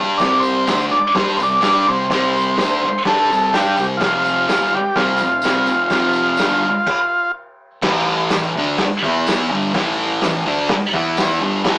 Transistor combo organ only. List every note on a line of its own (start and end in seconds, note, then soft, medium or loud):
0.18 0.43 D5 loud
0.40 0.86 C5 loud
0.91 1.16 D5 medium
1.15 1.33 C5 loud
1.37 1.41 C5 medium
1.43 1.90 D5 loud
1.88 2.12 C5 medium
2.14 2.58 C5 loud
2.59 3.03 C5 loud
3.07 3.56 A4 loud
3.54 3.87 G4 medium
3.97 4.24 F4 medium
4.25 4.74 F4 medium
4.75 4.99 G4 medium
4.95 7.31 F4 medium